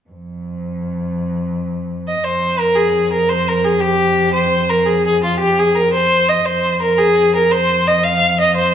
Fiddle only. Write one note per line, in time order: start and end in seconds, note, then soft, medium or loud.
2.08 2.26 D#5 medium
2.24 2.61 C5 medium
2.59 2.77 A#4 medium
2.76 3.12 G#4 medium
3.12 3.30 A#4 medium
3.29 3.50 C5 medium
3.48 3.66 A#4 medium
3.64 3.82 G#4 medium
3.80 4.33 G4 medium
4.33 4.71 C5 medium
4.70 4.88 A#4 medium
4.86 5.05 G#4 medium
5.06 5.21 G#4 medium
5.23 5.38 F4 medium
5.39 5.60 G4 medium
5.59 5.77 G#4 medium
5.75 5.92 A#4 medium
5.93 6.30 C5 loud
6.29 6.47 D#5 medium
6.45 6.81 C5 medium
6.82 7.00 A#4 medium
6.98 7.34 G#4 medium
7.35 7.53 A#4 medium
7.52 7.89 C5 medium
7.88 8.05 D#5 medium
8.04 8.39 F5 loud
8.40 8.55 D#5 medium
8.56 8.74 C5 medium